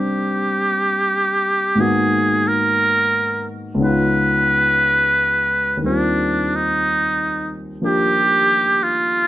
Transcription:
Already playing: grand piano C3 G3 A#3 C4 D4 D#4 D5, muted trumpet G4
1.75 grand piano G#2 D#3 A#3 B3
1.80 grand piano F#4, muted trumpet G#4
2.48 muted trumpet A#4
3.74 grand piano C#2 C#3
3.79 grand piano B3 D#4
3.85 grand piano F4, muted trumpet B4
5.77 grand piano D#2 D#3
5.83 grand piano G3 C4, muted trumpet D4
5.89 grand piano F4
6.56 muted trumpet D#4
7.82 grand piano F3 A#3 D4 G4
7.86 muted trumpet G4
8.83 muted trumpet F4

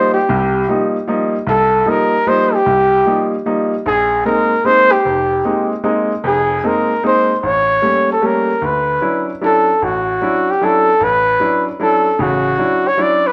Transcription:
Already playing: grand piano F3 G3 A#3 D#4, trumpet C5
0.14 trumpet G4
0.29 grand piano C2 C3
0.68 grand piano F3 G3 A#3 D#4
1.07 grand piano F3 G3 A#3 D#4
1.47 grand piano C2, trumpet A4
1.86 grand piano F3 G3 A#3 D#4, trumpet A#4
2.27 grand piano F3 G3 A#3 D#4, trumpet C5
2.55 trumpet G4
2.66 grand piano C2
3.06 grand piano F3 G3 A#3 D#4
3.46 grand piano F3 G3 A#3 D#4
3.86 grand piano A#1, trumpet G#4
4.25 grand piano G#3 A#3 C4 D#4, trumpet A#4
4.65 grand piano G#3 A#3 C4 D#4, trumpet C5
4.92 trumpet G4
5.05 grand piano F1
5.45 grand piano G#3 A#3 C4 D#4
5.84 grand piano G#3 A#3 C4 D#4
6.24 grand piano F1 F2, trumpet G#4
6.64 grand piano G#3 A#3 C4 D#4, trumpet A#4
7.03 grand piano G#3 A#3 C4 D#4, trumpet C5
7.40 grand piano A1, trumpet C5
7.46 trumpet C#5
7.82 grand piano G3 A3 A#3 C#4
8.12 trumpet A4
8.22 grand piano G3 A3 A#3 C#4
8.26 trumpet A#4
8.62 grand piano D2, trumpet B4
9.01 grand piano F#3 C#4 D4 E4
9.41 grand piano F#3 C#4 D4 E4, trumpet A4
9.82 grand piano A1, trumpet F#4
10.22 grand piano F#3 C#4 D4 E4
10.51 trumpet G4
10.61 grand piano F#3 C#4 D4 E4, trumpet A4
11.01 grand piano A1, trumpet B4
11.40 grand piano F#3 C#4 D4 E4
11.80 grand piano F#3 C#4 D4 E4, trumpet A4
12.19 grand piano A1 C#3, trumpet F#4
12.58 grand piano F#3 C#4 D4 E4
12.88 trumpet C#5
12.97 grand piano F#3 C#4 D4 E4
13.02 trumpet D5
13.27 trumpet B4

